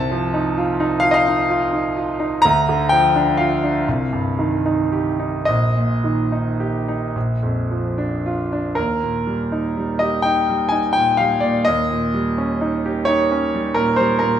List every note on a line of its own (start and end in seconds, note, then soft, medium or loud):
0.00 2.38 C2 medium
0.00 0.25 C3 medium
0.00 1.00 A5 loud
0.11 0.48 F3 medium
0.34 0.71 D#4 medium
0.58 0.94 F4 medium
0.80 1.16 D#4 medium
1.00 1.40 F4 medium
1.00 1.08 F5 loud
1.11 1.17 D#5 medium
1.11 2.41 F5 loud
1.28 1.64 D#4 medium
1.50 1.86 F4 medium
1.73 2.10 D#4 medium
1.97 2.34 F4 medium
2.20 2.43 D#4 medium
2.42 3.83 D2 medium
2.42 2.90 A#5 loud
2.69 3.06 D3 medium
2.89 3.29 F3 medium
2.89 3.37 G5 loud
3.16 3.53 D4 medium
3.37 3.78 F4 medium
3.37 5.47 F5 medium
3.64 3.87 D4 medium
3.88 5.44 C2 medium
4.13 4.54 G2 medium
4.39 4.81 D#3 medium
4.66 5.08 D#4 medium
4.92 5.36 G4 medium
5.19 5.47 D#4 medium
5.45 7.12 A#1 medium
5.45 7.14 D#5 medium
5.76 6.22 A#2 soft
6.04 6.49 D#3 soft
6.32 6.77 D#4 medium
6.60 7.04 G4 medium
6.88 7.15 D#4 soft
7.15 8.73 A#1 medium
7.43 7.86 F2 soft
7.71 8.14 F3 soft
7.98 8.42 D4 soft
8.26 8.68 F4 medium
8.53 8.77 D4 medium
8.75 11.62 D#2 medium
8.75 9.99 A#4 medium
9.03 9.42 A#2 soft
9.27 9.66 G3 soft
9.52 9.91 D#4 soft
9.77 10.15 G3 soft
9.99 10.39 G4 soft
9.99 10.24 D#5 medium
10.22 10.63 D#4 soft
10.22 10.71 G5 medium
10.49 10.86 G3 soft
10.69 11.09 D#4 medium
10.69 10.93 G#5 medium
10.93 11.33 A#2 soft
10.93 11.17 G5 medium
11.17 11.57 G3 soft
11.17 11.41 F5 medium
11.40 11.66 A#2 soft
11.40 11.65 D5 medium
11.65 14.40 D#2 medium
11.65 13.06 D#5 medium
11.91 12.28 A#2 medium
12.14 12.51 G3 medium
12.38 12.75 C#4 medium
12.61 12.98 D#4 medium
12.86 13.21 G4 medium
13.05 13.44 D#4 medium
13.05 13.74 C#5 medium
13.31 13.67 C#4 medium
13.54 13.90 G3 medium
13.74 14.13 A#2 soft
13.74 13.98 A#4 medium
13.96 14.36 G3 medium
13.96 14.20 C5 medium
14.19 14.40 A#2 medium
14.19 14.40 A#4 medium